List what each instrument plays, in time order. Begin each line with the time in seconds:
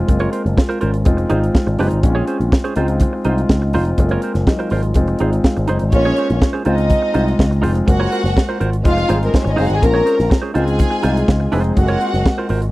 Already playing: grand piano G#3 C4 D#4 F4 G#4
0.08 picked electric bass F#1, grand piano G#3 A#3 C4 F4, muted clean electric guitar stroke, kick, closed hi-hat
0.20 clean electric guitar F4 A#4 C#5, closed hi-hat
0.32 clean electric guitar F4 A#4 C5, closed hi-hat
0.46 picked electric bass F#1, closed hi-hat
0.57 grand piano G#3 F4, muted clean electric guitar stroke, kick, snare
0.69 clean electric guitar F4 A#4 C5, closed hi-hat
0.81 picked electric bass G#1, grand piano C#4 A#4, clean electric guitar F4 A#4 C5, closed hi-hat
0.93 muted clean electric guitar stroke, closed hi-hat
1.05 picked electric bass F1, grand piano G#3 C4 D#4 F4, muted clean electric guitar stroke, kick, closed hi-hat
1.17 muted clean electric guitar stroke, closed hi-hat
1.29 picked electric bass G#1, grand piano G#3 C4 D#4 F4, clean electric guitar D#4 G#4 C5, closed hi-hat
1.42 muted clean electric guitar stroke, closed hi-hat
1.55 kick, snare
1.67 picked electric bass G#1, muted clean electric guitar stroke, closed hi-hat
1.79 picked electric bass F#1, grand piano G#3 C4 D#4 F4, clean electric guitar D#4 G#4 C5, open hi-hat
1.91 picked electric bass G#1, muted clean electric guitar stroke, closed hi-hat
2.03 picked electric bass A#1, grand piano G#3 C4 C#4 D#4, muted clean electric guitar stroke, kick, closed hi-hat
2.10 grand piano F4
2.15 clean electric guitar C#4 G#4 C#5
2.27 clean electric guitar C#4 G#4 C5, closed hi-hat
2.40 picked electric bass A#1, closed hi-hat
2.52 muted clean electric guitar stroke, kick, snare
2.64 clean electric guitar C#4 G#4 C5, closed hi-hat
2.76 picked electric bass C#2, grand piano G#3 C4 D#4 F4, clean electric guitar D#4 F4 C5, closed hi-hat
2.88 muted clean electric guitar stroke, closed hi-hat
3.00 muted clean electric guitar stroke, kick, closed hi-hat
3.13 muted clean electric guitar stroke
3.25 picked electric bass C2, grand piano G#3 C4 D#4 F4, clean electric guitar D#4 F4 C5, closed hi-hat
3.38 muted clean electric guitar stroke, closed hi-hat
3.49 picked electric bass C#2, kick, snare
3.62 muted clean electric guitar stroke
3.73 picked electric bass F1, grand piano G#3 C4 D#4 F4, clean electric guitar D#4 F4 C5, open hi-hat
3.85 muted clean electric guitar stroke, closed hi-hat
3.98 picked electric bass F#1, grand piano G#3 A3 C4 F4, muted clean electric guitar stroke, kick, closed hi-hat
4.05 grand piano A#3
4.09 clean electric guitar F4 A#4 C#5, closed hi-hat
4.22 clean electric guitar F4 A#4 C5, closed hi-hat
4.34 picked electric bass F#1, muted clean electric guitar stroke, snare, closed hi-hat
4.47 grand piano F#3 D#4, muted clean electric guitar stroke, kick, snare
4.59 clean electric guitar F4 A#4 C5, closed hi-hat
4.70 picked electric bass G#1, grand piano G#3 F4, clean electric guitar F4 A#4 C5, open hi-hat
4.83 muted clean electric guitar stroke, closed hi-hat
4.94 picked electric bass F1, grand piano G#3 C4 D#4 F4, muted clean electric guitar stroke, kick, closed hi-hat
5.08 muted clean electric guitar stroke, closed hi-hat
5.19 picked electric bass G#1, grand piano G#3 C4 D#4 F4, clean electric guitar D#4 G#4 C5, closed hi-hat
5.32 muted clean electric guitar stroke, closed hi-hat
5.44 grand piano G#4 F5, kick, snare
5.57 picked electric bass G#1, muted clean electric guitar stroke, closed hi-hat
5.68 picked electric bass F#1, clean electric guitar D#4 G#4 C5, grand piano D#4 C5, closed hi-hat
5.79 picked electric bass G#1, muted clean electric guitar stroke, closed hi-hat
5.92 picked electric bass A#1, grand piano G#3 A#3 C#4 F4, violin section C#4 C#5, muted clean electric guitar stroke, kick, closed hi-hat
6.05 clean electric guitar C#4 G#4 C#5
6.17 clean electric guitar C#4 G#4 C5, closed hi-hat
6.30 picked electric bass A#1, muted clean electric guitar stroke, closed hi-hat
6.42 muted clean electric guitar stroke, kick, snare
6.53 clean electric guitar C#4 G#4 C5
6.65 picked electric bass C#2, grand piano G#3 C4 D#4 F4, clean electric guitar D#4 F4 C5, violin section D#4 D#5, closed hi-hat
6.78 muted clean electric guitar stroke, closed hi-hat
6.90 muted clean electric guitar stroke, kick, closed hi-hat
7.02 muted clean electric guitar stroke
7.14 picked electric bass C2, grand piano G#3 C4 D#4 F4, clean electric guitar D#4 F4 C5, closed hi-hat
7.26 muted clean electric guitar stroke, closed hi-hat
7.39 picked electric bass C#2, kick, snare
7.51 muted clean electric guitar stroke, closed hi-hat
7.62 picked electric bass F1, grand piano G#3 C4 D#4 F4, clean electric guitar D#4 F4 C5, open hi-hat
7.75 muted clean electric guitar stroke, closed hi-hat
7.87 picked electric bass F#1, grand piano G#3 A#3 C4 F#4, violin section F#4 F#5, muted clean electric guitar stroke, kick, closed hi-hat
8.00 clean electric guitar F4 A#4 C#5
8.12 clean electric guitar F4 A#4 C5, closed hi-hat
8.24 picked electric bass F#1, muted clean electric guitar stroke, snare, closed hi-hat
8.36 muted clean electric guitar stroke, kick, snare
8.49 clean electric guitar F4 A#4 C5
8.60 picked electric bass G#1, clean electric guitar F4 A#4 C5, closed hi-hat
8.72 muted clean electric guitar stroke, closed hi-hat
8.84 picked electric bass F1, grand piano G#3 C4 D#4 F4, violin section F4 F5, muted clean electric guitar stroke, kick, closed hi-hat
8.97 muted clean electric guitar stroke, closed hi-hat
9.09 picked electric bass G#1, grand piano G3 C4 D#4 F4, clean electric guitar D#4 G#4 C5, closed hi-hat
9.15 grand piano G#3
9.20 muted clean electric guitar stroke, closed hi-hat
9.25 violin section A#3 A#4
9.34 violin section C4 C5, kick, snare
9.42 picked electric bass G#1, violin section C#4 C#5, muted clean electric guitar stroke
9.47 violin section D#4 D#5, closed hi-hat
9.56 picked electric bass F#1, grand piano G#3 C4 D#4 G#4, clean electric guitar D#4 G#4 C5, violin section F4 F5, open hi-hat
9.66 picked electric bass G#1, violin section F#4 F#5, muted clean electric guitar stroke, closed hi-hat
9.74 violin section G#4 G#5
9.81 picked electric bass A#1, grand piano G#3 C4 C#4 F4, violin section A#4 A#5, muted clean electric guitar stroke, kick, closed hi-hat
9.94 clean electric guitar C#4 G#4 C#5
10.05 clean electric guitar C#4 G#4 C5, closed hi-hat
10.18 picked electric bass A#1, muted clean electric guitar stroke, snare, closed hi-hat
10.30 muted clean electric guitar stroke, kick, snare
10.42 clean electric guitar C#4 G#4 C5
10.54 picked electric bass C#2, grand piano G#3 C4 D#4 F4, clean electric guitar D#4 F4 C5, violin section G#4 G#5, closed hi-hat
10.66 muted clean electric guitar stroke, closed hi-hat
10.79 muted clean electric guitar stroke, kick, closed hi-hat
10.90 muted clean electric guitar stroke
11.03 picked electric bass C2, grand piano G#3 C4 D#4 F4, clean electric guitar D#4 F4 C5, closed hi-hat
11.15 muted clean electric guitar stroke, closed hi-hat
11.28 picked electric bass C#2, kick, snare
11.40 muted clean electric guitar stroke
11.52 picked electric bass F1, grand piano G#3 C4 D#4 G#4, clean electric guitar D#4 F4 C5, open hi-hat
11.64 muted clean electric guitar stroke, closed hi-hat
11.77 picked electric bass F#1, grand piano G#3 A3 C4 F#4, violin section F#4 F#5, muted clean electric guitar stroke, kick, closed hi-hat
11.83 grand piano A#3
11.88 clean electric guitar F4 A#4 C#5, closed hi-hat
12.01 clean electric guitar F4 A#4 C5, closed hi-hat
12.14 picked electric bass F#1, snare, closed hi-hat
12.26 muted clean electric guitar stroke, kick, snare
12.38 clean electric guitar F4 A#4 C5
12.49 picked electric bass G#1, clean electric guitar F4 A#4 C5, open hi-hat
12.62 muted clean electric guitar stroke, closed hi-hat